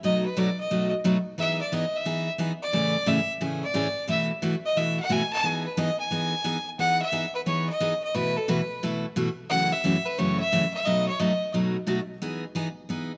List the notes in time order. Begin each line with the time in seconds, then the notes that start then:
0.03 B2 F#3 A3 D#4 F#4 D#5
0.26 B4
0.37 B2 F#3 A3 D#4 F#4 D5
0.60 D#5
0.71 B2 F#3 A3 D#4 F#4
1.04 B2 F#3 A3 D#4 F#4
1.38 E3 B3 D#4 G#4 E5
1.61 D5
1.72 E3 B3 D#4 G#4 D#5
1.96 E5
2.05 E3 B3 D#4 G#4
2.38 E3 B3 D#4 G#4
2.62 D5
2.73 A2 C#3 E3 A3 C#4 G#4
3.06 A2 C#3 E3 A3 C#4 G#4 E5
3.41 A2 C#3 E3 A3 C#4 G#4
3.63 D5
3.74 A2 C#3 E3 A3 C#4 G#4
4.08 B2 E3 A3 E4 F#4 E5
4.42 B2 E3 A3 E4 F#4
4.66 D#5
4.76 B2 E3 A3 E4 F#4 E5
5.00 F#5
5.09 B2 E3 A3 E4 F#4 G#5
5.33 A5
5.43 E3 B3 D#4 G#4 G#5
5.66 B4
5.77 E3 B3 D#4 G#4 D#5
6.00 G#5
6.11 E3 B3 D#4 G#4
6.44 E3 B3 D#4 G#4
6.79 E3 B3 D#4 G#4 F#5
7.02 E5
7.12 E3 B3 D#4 G#4
7.35 B4
7.46 E3 B3 D#4 G#4 C#5
7.69 D#5
7.80 E3 B3 D#4 G#4
8.03 D#5
8.15 B2 E3 A3 E4 F#4 B4
8.37 A4
8.48 B2 E3 A3 E4 F#4 B4
8.83 B2 E3 A3 E4 F#4
9.16 B2 E3 A3 E4 F#4
9.49 F#2 C#3 E3 A3 C#4 F#4 F#5
9.72 E5
9.84 F#2 C#3 E3 A3 C#4 F#4
10.06 B4
10.18 F#2 C#3 E3 A3 C#4 F#4 C#5
10.40 E5
10.52 F#2 C#3 E3 A3 C#4 F#4
10.74 E5
10.85 B2 F#3 A3 D#4 F#4 D#5
11.08 C#5
11.19 B2 F#3 A3 D#4 F#4 D#5
11.54 B2 F#3 A3 D#4 F#4
11.87 B2 F#3 A3 D#4 F#4
12.22 E3 B3 D#4 G#4
12.55 E3 B3 D#4 G#4
12.89 E3 B3 D#4 G#4